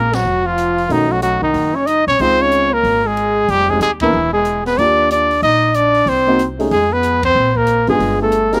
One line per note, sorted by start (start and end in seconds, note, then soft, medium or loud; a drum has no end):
0.00 0.22 A#1 medium
0.00 0.16 A#3 medium
0.00 0.16 A#4 medium
0.13 0.48 F#3 medium
0.13 0.48 F#4 medium
0.13 snare medium
0.13 ride medium
0.24 0.86 F1 medium
0.46 0.90 F3 medium
0.46 0.93 F4 medium
0.58 closed hi-hat soft
0.78 open hi-hat soft
0.89 1.39 B1 medium
0.89 1.11 D#3 medium
0.89 1.39 A3 soft
0.89 1.39 C#4 soft
0.89 1.39 D#4 soft
0.89 1.13 D#4 medium
0.89 1.39 F#4 medium
0.89 open hi-hat soft
1.09 1.22 F#3 medium
1.09 1.22 F#4 medium
1.22 1.41 F#3 medium
1.22 1.42 F#4 medium
1.22 closed hi-hat soft
1.42 1.53 C2 medium
1.42 1.76 D#3 medium
1.42 1.77 D#4 medium
1.54 2.03 F#1 medium
1.54 open hi-hat soft
1.75 1.89 C#4 medium
1.75 1.88 C#5 medium
1.86 2.07 D#4 medium
1.86 2.07 D#5 medium
1.86 closed hi-hat soft
2.07 2.18 B1 medium
2.07 2.21 C#4 medium
2.07 2.23 C#5 medium
2.07 open hi-hat soft
2.19 2.81 C#2 medium
2.19 2.68 G#3 medium
2.19 2.43 C4 medium
2.19 2.68 C4 soft
2.19 2.69 D#4 soft
2.19 2.69 F4 medium
2.19 2.43 C5 medium
2.19 open hi-hat soft
2.41 2.75 C#4 medium
2.41 2.75 C#5 medium
2.52 closed hi-hat soft
2.73 3.06 A#3 medium
2.73 3.08 A#4 medium
2.83 3.45 G#1 medium
2.83 open hi-hat soft
3.05 3.51 G#3 medium
3.05 3.52 G#4 medium
3.17 closed hi-hat soft
3.48 3.79 F1 medium
3.48 3.71 G3 medium
3.48 3.72 G4 loud
3.48 open hi-hat soft
3.69 3.81 G#3 medium
3.69 3.80 G#3 soft
3.69 3.81 C4 soft
3.69 3.81 D#4 soft
3.69 3.81 G4 medium
3.69 3.82 G#4 medium
3.69 kick soft
3.80 4.11 D#2 medium
3.80 3.90 G#3 medium
3.80 3.91 G#4 medium
3.80 closed hi-hat soft
4.00 4.32 E3 medium
4.00 4.12 A#3 medium
4.00 4.13 B3 medium
4.00 4.13 D4 medium
4.00 4.31 E4 medium
4.00 4.13 A#4 medium
4.00 kick medium
4.00 ride medium
4.13 4.75 E1 medium
4.33 4.63 G#3 medium
4.33 4.63 G#4 medium
4.45 closed hi-hat soft
4.66 4.80 B3 medium
4.66 4.79 B4 medium
4.66 snare soft
4.66 open hi-hat soft
4.78 5.39 D#2 medium
4.78 5.27 A#3 medium
4.78 5.10 D4 medium
4.78 5.27 D4 soft
4.78 5.27 F4 soft
4.78 5.27 G4 medium
4.78 5.10 D5 loud
4.78 open hi-hat soft
5.11 5.41 D4 medium
5.11 5.41 D5 medium
5.11 closed hi-hat soft
5.31 open hi-hat soft
5.42 6.03 A#1 medium
5.42 5.78 D#4 medium
5.42 5.77 D#5 medium
5.42 open hi-hat soft
5.74 6.11 D4 medium
5.74 6.10 D5 medium
5.74 closed hi-hat soft
5.95 open hi-hat soft
6.06 6.67 C2 medium
6.06 6.47 C4 medium
6.06 6.46 C5 loud
6.06 open hi-hat soft
6.27 6.38 A#3 medium
6.27 6.38 C4 medium
6.27 6.38 D#4 medium
6.27 6.39 F#4 medium
6.39 closed hi-hat soft
6.59 6.70 A3 medium
6.59 6.70 C#4 medium
6.59 6.70 D#4 medium
6.59 6.71 G#4 medium
6.59 open hi-hat soft
6.71 7.32 F2 medium
6.71 6.95 G#3 medium
6.71 6.94 G#4 medium
6.71 open hi-hat soft
6.93 7.24 B3 medium
6.93 7.24 B4 medium
7.03 closed hi-hat soft
7.23 7.59 C4 medium
7.23 7.58 C5 medium
7.23 kick medium
7.23 ride medium
7.35 7.84 A#1 medium
7.55 7.89 A#3 medium
7.55 7.88 A#4 medium
7.55 kick medium
7.67 closed hi-hat medium
7.87 7.99 F#1 medium
7.87 8.19 G#3 medium
7.87 8.29 B3 medium
7.87 8.29 D4 medium
7.87 8.30 F4 medium
7.87 8.30 G#4 medium
7.87 8.18 G#4 medium
7.87 open hi-hat soft
7.99 8.60 G1 medium
7.99 open hi-hat soft
8.22 8.54 A3 medium
8.22 8.56 A4 medium
8.32 closed hi-hat soft
8.52 8.60 A#3 medium
8.52 8.60 C4 medium
8.52 8.60 D#4 medium
8.52 8.60 F#4 soft
8.52 8.60 G#4 medium
8.52 8.60 A#4 medium
8.52 snare medium
8.52 open hi-hat soft